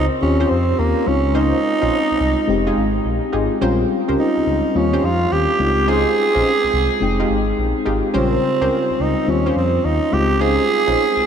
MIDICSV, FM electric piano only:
0, 0, Header, 1, 2, 480
1, 0, Start_track
1, 0, Tempo, 566038
1, 1145, Time_signature, 4, 2, 24, 8
1, 9551, End_track
2, 0, Start_track
2, 0, Title_t, "FM electric piano"
2, 0, Program_c, 0, 5
2, 0, Control_c, 0, 64, 127
2, 0, Note_on_c, 0, 49, 60
2, 0, Note_on_c, 0, 60, 60
2, 0, Note_on_c, 0, 65, 56
2, 0, Note_on_c, 0, 67, 75
2, 163, Note_off_c, 0, 60, 0
2, 166, Note_off_c, 0, 49, 0
2, 170, Note_off_c, 0, 65, 0
2, 174, Note_off_c, 0, 67, 0
2, 182, Note_on_c, 0, 60, 68
2, 184, Note_on_c, 0, 61, 57
2, 189, Note_on_c, 0, 65, 60
2, 193, Note_on_c, 0, 67, 67
2, 195, Control_c, 0, 64, 0
2, 353, Control_c, 0, 64, 127
2, 897, Note_off_c, 0, 60, 0
2, 902, Note_on_c, 0, 56, 59
2, 904, Note_off_c, 0, 61, 0
2, 907, Note_off_c, 0, 65, 0
2, 907, Note_on_c, 0, 60, 52
2, 909, Note_off_c, 0, 67, 0
2, 915, Control_c, 0, 64, 0
2, 916, Note_on_c, 0, 63, 54
2, 923, Note_on_c, 0, 65, 68
2, 1067, Control_c, 0, 64, 127
2, 2080, Note_off_c, 0, 56, 0
2, 2082, Note_off_c, 0, 60, 0
2, 2087, Note_off_c, 0, 63, 0
2, 2090, Note_off_c, 0, 65, 0
2, 2098, Note_on_c, 0, 56, 81
2, 2105, Note_on_c, 0, 60, 71
2, 2111, Note_on_c, 0, 63, 70
2, 2116, Control_c, 0, 64, 0
2, 2119, Note_on_c, 0, 67, 84
2, 2251, Control_c, 0, 64, 127
2, 3042, Note_off_c, 0, 56, 0
2, 3046, Note_off_c, 0, 60, 0
2, 3049, Note_off_c, 0, 63, 0
2, 3053, Note_off_c, 0, 67, 0
2, 3063, Note_on_c, 0, 55, 80
2, 3070, Note_on_c, 0, 60, 73
2, 3076, Note_on_c, 0, 61, 70
2, 3077, Control_c, 0, 64, 0
2, 3082, Note_on_c, 0, 65, 94
2, 3232, Control_c, 0, 64, 127
2, 4005, Note_off_c, 0, 55, 0
2, 4008, Note_off_c, 0, 60, 0
2, 4011, Note_off_c, 0, 61, 0
2, 4015, Note_off_c, 0, 65, 0
2, 4026, Note_on_c, 0, 55, 63
2, 4028, Note_on_c, 0, 60, 58
2, 4033, Note_on_c, 0, 61, 58
2, 4035, Note_on_c, 0, 65, 71
2, 4037, Control_c, 0, 64, 0
2, 4190, Control_c, 0, 64, 127
2, 4738, Note_off_c, 0, 60, 0
2, 4742, Note_on_c, 0, 56, 58
2, 4745, Note_off_c, 0, 55, 0
2, 4748, Note_on_c, 0, 60, 54
2, 4749, Note_off_c, 0, 61, 0
2, 4750, Note_off_c, 0, 65, 0
2, 4755, Note_on_c, 0, 63, 56
2, 4756, Control_c, 0, 64, 0
2, 4762, Note_on_c, 0, 65, 66
2, 4913, Control_c, 0, 64, 127
2, 5920, Note_off_c, 0, 56, 0
2, 5922, Note_off_c, 0, 60, 0
2, 5926, Note_off_c, 0, 63, 0
2, 5929, Note_off_c, 0, 65, 0
2, 5939, Note_on_c, 0, 56, 77
2, 5947, Note_on_c, 0, 60, 64
2, 5954, Note_on_c, 0, 63, 67
2, 5956, Control_c, 0, 64, 0
2, 5960, Note_on_c, 0, 79, 88
2, 6078, Control_c, 0, 64, 127
2, 6883, Note_off_c, 0, 56, 0
2, 6887, Note_off_c, 0, 60, 0
2, 6890, Note_off_c, 0, 63, 0
2, 6893, Note_off_c, 0, 79, 0
2, 6902, Note_on_c, 0, 55, 68
2, 6908, Note_on_c, 0, 60, 59
2, 6915, Note_on_c, 0, 49, 59
2, 6916, Control_c, 0, 64, 0
2, 6922, Note_on_c, 0, 65, 74
2, 7064, Control_c, 0, 64, 127
2, 7844, Note_off_c, 0, 55, 0
2, 7847, Note_off_c, 0, 60, 0
2, 7851, Note_off_c, 0, 49, 0
2, 7855, Note_off_c, 0, 65, 0
2, 7866, Note_on_c, 0, 55, 63
2, 7868, Note_on_c, 0, 60, 55
2, 7872, Note_on_c, 0, 61, 53
2, 7874, Control_c, 0, 64, 0
2, 7875, Note_on_c, 0, 65, 66
2, 8044, Control_c, 0, 64, 127
2, 8575, Note_off_c, 0, 60, 0
2, 8579, Note_on_c, 0, 56, 58
2, 8585, Note_off_c, 0, 55, 0
2, 8586, Note_on_c, 0, 60, 55
2, 8588, Note_off_c, 0, 65, 0
2, 8589, Note_off_c, 0, 61, 0
2, 8592, Note_on_c, 0, 63, 57
2, 8596, Control_c, 0, 64, 0
2, 8599, Note_on_c, 0, 65, 64
2, 8731, Control_c, 0, 64, 127
2, 9551, Note_off_c, 0, 56, 0
2, 9551, Note_off_c, 0, 60, 0
2, 9551, Note_off_c, 0, 63, 0
2, 9551, Note_off_c, 0, 65, 0
2, 9551, End_track
0, 0, End_of_file